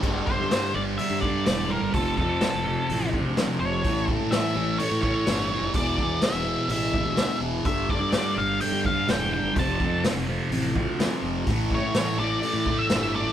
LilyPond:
<<
  \new Staff \with { instrumentName = "Lead electric guitar" } { \time 4/4 \key f \major \tempo 4 = 126 r8 c''4 d''8 e''8 d''8 d''8 bes'8 | a'8 a'2 r4 cis''8~ | cis''8 r8 e''4 cis''8 cis''4. | d''4 e''4 e''4. r8 |
e''8 d''8 d''8 f''8 g''8 f''8 g''8 g''8 | a''4 r2. | r8 cis''4 d''4~ d''16 e''8. d''8 | }
  \new Staff \with { instrumentName = "Distorted electric guitar" } { \clef bass \time 4/4 \key f \major <g, d g>8 <d g>8 <g, d g>8 <g, d g>8 <g, d g>8 <g, d g>8 <g, d g>8 <d g>8 | <f, c f>8 <c f>8 <f, c f>8 <f, c f>8 <f, c f>8 <f, c f>8 <f, c f>8 <c f>8 | <a, e a>8 <e a>8 <a, e a>8 <a, e a>8 <a, e a>8 <a, e a>8 <a, e a>8 <e a>8 | <e, b, e>8 <b, e>8 <e, b, e>8 <e, b, e>8 <e, b, e>8 <e, b, e>8 <e, b, e>8 <b, e>8 |
<g, d g>8 <d g>8 <g, d g>8 <g, d g>8 <g, d g>8 <g, d g>8 <g, d g>8 <d g>8 | <f, c f>8 <c f>8 <f, c f>8 <f, c f>8 <f, c f>8 <f, c f>8 <f, c f>8 <c f>8 | <a, e a>8 <e a>8 <a, e a>8 <a, e a>8 <a, e a>8 <a, e a>8 <a, e a>8 <e a>8 | }
  \new Staff \with { instrumentName = "Fingered electric bass" } { \clef bass \time 4/4 \key f \major g,,8. g,8. g,,8 r16 g,8. e,,8. g,,16 | f,,8 f,8 r16 f,,8 r16 a,,8. d,8 r16 f,,8 | a,,8. a,8. a,,8 r16 a,8. g,,8. f,,16 | e,,8 e,8 r16 e,,8 r16 a,,8. d,8 r16 e,,8 |
g,,8. g,8. g,,8 r16 g,8. e,,8. g,,16 | f,,8 f,8 r16 f,,8 r16 a,,8. d,8 r16 f,,8 | a,,8. a,8. a,,8 r16 a,8. g,,8. a,,16 | }
  \new DrumStaff \with { instrumentName = "Drums" } \drummode { \time 4/4 <cymc bd>8 bd8 <hho sn>4 hho8 bd8 <hho sn>4 | <hho bd>8 bd8 <hho sn>4 hho8 bd8 <hho sn>4 | <hho bd>8 bd8 <hho sn>4 hho8 bd8 <hho sn>4 | <hho bd>8 bd8 <hho sn>4 hho8 bd8 <hho sn>4 |
<hho bd>8 bd8 <hho sn>4 hho8 bd8 <hho sn>4 | <hho bd>8 bd8 <hho sn>4 hho8 bd8 <hho sn>4 | <hho bd>8 bd8 <hho sn>4 hho8 bd8 <hho sn>4 | }
>>